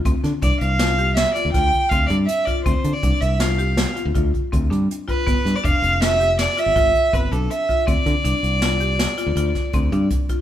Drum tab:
HH |xxxxxxxxxxxxxx|xxxxxxxxxxxxxx|xxxxxxxxxxxxxx|xxxxxxxxxxxxxx|
SD |-o--o-o-o-----|----o-o-------|-o--o-o-------|-o--o-o--o----|
BD |o-o-----ooo--o|o-o-----ooo--o|o-o-----ooo--o|oo-------oo-oo|